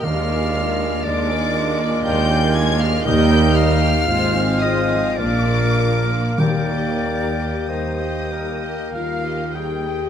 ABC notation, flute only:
X:1
M:3/4
L:1/16
Q:1/4=55
K:Eb
V:1 name="Flute"
f4 d4 g2 a f | g2 f4 e2 d3 z | d4 e4 f2 g2 |]